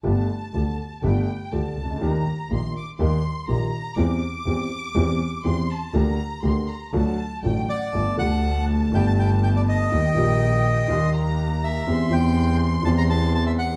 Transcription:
X:1
M:4/4
L:1/16
Q:1/4=122
K:Gm
V:1 name="Violin section"
a8 g4 a4 | b4 c'2 d'2 c'4 b4 | d'12 c'2 a2 | b4 c'2 b2 a4 g2 ^f2 |
a16 | g8 c'2 b6 | c'16 |]
V:2 name="Bandoneon"
z16 | z16 | z16 | z12 z2 d2- |
d2 ^f4 z2 g a g2 g d e2- | e8- e2 z4 =e2- | =e2 g4 z2 a b a2 a e ^f2 |]
V:3 name="Grand piano" clef=bass
[G,,,G,,D,G,A,G]2 z2 [D,,D,G,A,G]2 z2 [G,,,G,,D,G,A,G]2 z2 [D,,D,G,A,G]2 z/2 C,,/2 ^C,,/2 D,,/2 | [E,,E,G,B,G]2 z2 [B,,,B,,E,G,B,G]2 z2 [E,,E,G,B,G]2 z2 [B,,,B,,E,G,B,G]2 z2 | [=E,,=E,G,CG]2 z2 [E,,E,G,CG]2 z2 [E,,E,G,CG]2 z2 [E,,E,G,CG]2 z2 | [D,,D,G,B,G]2 z2 [D,,D,G,B,G]2 z2 [D,,D,^F,A,^F]2 z2 [A,,,A,,D,F,A,F]2 z2 |
[G,,,G,,D,G,A,G]2 [D,,D,G,A,G]6 [G,,,G,,D,G,A,G]8 | [E,,E,G,B,G]2 [B,,,B,,E,G,B,G]6 [E,,E,G,B,G]8 | [=E,,=E,G,CG]2 [E,,E,G,CG]6 [E,,E,G,CG]8 |]
V:4 name="Double bass" clef=bass
G,,,2 z2 D,,2 z2 G,,,2 z2 D,,2 ^C,,2 | E,,2 z2 B,,,2 z2 E,,2 z2 B,,,2 z2 | =E,,2 z2 E,,2 z2 E,,2 z2 E,,2 z2 | D,,2 z2 D,,2 z2 D,,2 z2 A,,,2 z2 |
G,,,2 D,,6 G,,,8 | E,,2 B,,,6 E,,8 | =E,,2 E,,6 E,,8 |]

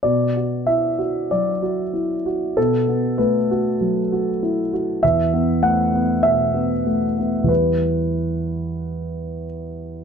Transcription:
X:1
M:4/4
L:1/8
Q:1/4=96
K:Bphr
V:1 name="Grand piano"
d2 e2 d4 | A2 B4- B z | e2 f2 e4 | B6 z2 |]
V:2 name="Grand piano"
B,, F E F F, F E F | B,, B, A, F F, F E F | E,, B, A, B, B,, B, A, B, | [E,,G,B,E]8 |]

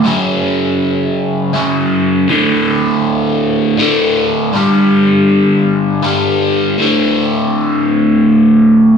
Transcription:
X:1
M:6/8
L:1/8
Q:3/8=53
K:D
V:1 name="Overdriven electric guitar" clef=bass
[F,,C,F,]4 [F,,C,F,]2 | [D,,A,,D,]4 [D,,A,,D,]2 | [G,,D,G,]4 [G,,D,G,]2 | [D,,A,,D,]6 |]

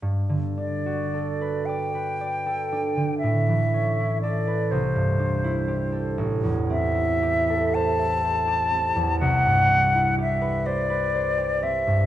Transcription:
X:1
M:6/8
L:1/16
Q:3/8=40
K:G
V:1 name="Flute"
z2 d4 g6 | e4 d2 c6 | z2 e4 a6 | f4 e2 d4 e2 |]
V:2 name="Harp"
G,, D, D F A B d B d A D D, | A,, E, ^C E A B =C,, G,, D E G A | A,,, E,, C E G A c e c G C E,, | C,, G,, C E G B c B c G C G,, |]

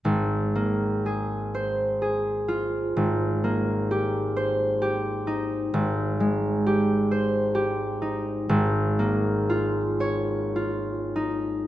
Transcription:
X:1
M:6/8
L:1/8
Q:3/8=43
K:Ab
V:1 name="Harp"
A,,, B, A c A F | A,,, B, G c G E | A,,, A, G c G E | A,,, B, F d F E |]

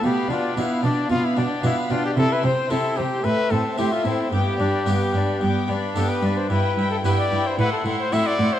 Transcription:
X:1
M:4/4
L:1/16
Q:1/4=112
K:Gmix
V:1 name="Violin section"
b2 g2 b2 g2 b2 g2 b2 g2 | c'2 g2 c'2 g2 c'2 a2 c'2 a2 | d'2 b2 d'2 b2 d'2 b2 d'2 b2 | [K:Em] b2 b2 b2 b2 c'2 c'2 c'2 c'2 |]
V:2 name="Violin section"
f2 d2 f2 d2 f2 d2 f2 d2 | e2 c2 e2 c2 e2 c2 e2 c2 | g2 d2 g2 d2 g2 d2 g2 d2 | [K:Em] g2 g2 g2 g2 f2 f2 f2 f2 |]
V:3 name="Trumpet"
G2 F2 E2 D2 F E D2 E2 F G | A B c2 A2 G2 B2 A2 G F E2 | G8- G2 z2 A B2 c | [K:Em] B3 A B d2 c B A2 c e d2 c |]
V:4 name="Viola section"
B,2 D2 B,2 D2 B,2 D2 B,2 D2 | E2 C2 E2 C2 A,2 C2 A,2 C2 | B,2 D2 B,2 D2 B,2 D2 B,2 D2 | [K:Em] E2 E2 E2 E2 E2 E2 E2 E2 |]
V:5 name="Harpsichord"
z4 [DF]4 z4 [DF]4 | z4 [CE]4 z4 [A,CE]4 | z4 [B,DG]4 z4 [B,DG]4 | [K:Em] z4 [B,EG]4 z4 [CEF]4 |]
V:6 name="Harpsichord" clef=bass
B,,2 B,,2 B,,2 B,,2 B,,2 B,,2 B,,2 B,,2 | C,2 C,2 C,2 C,2 A,,2 A,,2 A,,2 A,,2 | G,,2 G,,2 G,,2 G,,2 G,,2 G,,2 G,,2 G,,2 | [K:Em] G,,2 G,,2 G,,2 G,,2 A,,2 A,,2 A,,2 A,,2 |]
V:7 name="Cello section" clef=bass
B,,2 B,,2 B,,2 B,,2 B,,2 B,,2 B,,2 B,,2 | C,2 C,2 C,2 C,2 A,,2 A,,2 A,,2 A,,2 | G,,2 G,,2 G,,2 G,,2 G,,2 G,,2 G,,2 G,,2 | [K:Em] G,,2 G,,2 G,,2 G,,2 A,,2 A,,2 A,,2 A,,2 |]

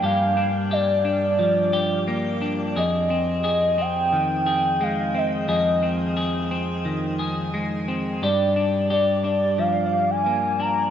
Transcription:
X:1
M:4/4
L:1/16
Q:1/4=88
K:Fdor
V:1 name="Soft synth lead"
f4 d2 d8 z2 | e6 g6 f2 e2- | e6 z8 z2 | d4 d2 d2 f3 a3 b2 |]
V:2 name="Clean electric guitar"
[G,,F,B,DG]2 D2 G2 D2 F,2 G2 B,2 D2 | [F,,A]2 C2 A2 C2 E,2 A2 A,2 C2 | [F,,A]2 C2 A2 C2 E,2 A2 A,2 C2 | [G,,G]2 D2 G2 D2 F,4 B,2 D2 |]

